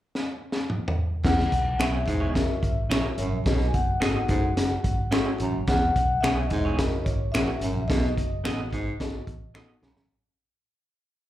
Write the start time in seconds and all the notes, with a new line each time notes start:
0.15 snare
0.52 snare
0.70 mid tom
0.88 floor tom
1.24 E1 E2 C#4 E4 G#4 B4 F#5, kick, snare, crash
1.40 snare
1.52 B1, kick, closed hi-hat
1.79 B1 B3 C#4 E4 G#4 B4 C#5 E5, finger snap, snare, closed hi-hat
2.07 G#2, kick, closed hi-hat
2.20 B3 E4 G#4 C#5
2.29 D#5
2.34 F#1 C#4 E4 F#4 A#4 E5, kick, snare, closed hi-hat
2.48 muted fingered electric bass stroke
2.63 G#1, kick, closed hi-hat
2.89 A#1 C#4 E4 F#4 A#4 C#5, finger snap, snare, closed hi-hat
3.17 G#1 F#2 C#5, closed hi-hat
3.31 A#1
3.46 B1 B2 B3 D#4 F#4 A4 D#5, kick, snare, closed hi-hat
3.61 snare
3.67 G#5
3.73 F#1 F#5, kick, closed hi-hat
4.00 G#1 B3 D#4 F#4 A4 D#5, finger snap, snare, closed hi-hat
4.29 F#1 G#2 C#4 E4 F#4 A4, kick, closed hi-hat
4.57 snare, closed hi-hat
4.84 G#1, kick, closed hi-hat
5.11 C#4 E4 F#4 A4 C#5, finger snap, snare, closed hi-hat
5.40 A1 F#2, closed hi-hat
5.54 F#1
5.67 E1 E2 C#4 E4 G#4 B4 F#5, kick, snare, closed hi-hat
5.96 B1, kick, closed hi-hat
6.21 B1 B3 C#4 E4 G#4 B4 C#5 E5, finger snap, snare, closed hi-hat
6.47 D#5, closed hi-hat
6.51 E1 G#2, kick
6.65 B3 E4 G#4 C#5
6.78 F#1 C#4 E4 F#4 A#4, kick, snare, closed hi-hat
6.92 muted fingered electric bass stroke
7.04 G#1 C#5, kick, closed hi-hat
7.32 A#1 A#3 C#4 E4 F#4 A#4 E5, finger snap, snare, closed hi-hat
7.36 C#5
7.61 G#1 F#2, closed hi-hat
7.75 A#1
7.88 B1 B2 B3 D#4 F#4 A4 D#5, kick, snare, closed hi-hat
8.04 snare
8.17 F#1, kick, closed hi-hat
8.43 A1 B3 D#4 F#4 A4 D#5, finger snap, snare, closed hi-hat
8.72 G#1 G#2, kick, closed hi-hat
8.99 B3 D#4 F#4 A4, kick, snare, closed hi-hat
9.27 A1, kick, closed hi-hat
9.54 B3 D#4 F#4 A4 D#5 F#5, finger snap, snare
9.82 B1 F#2 B5, snare
9.95 A1, snare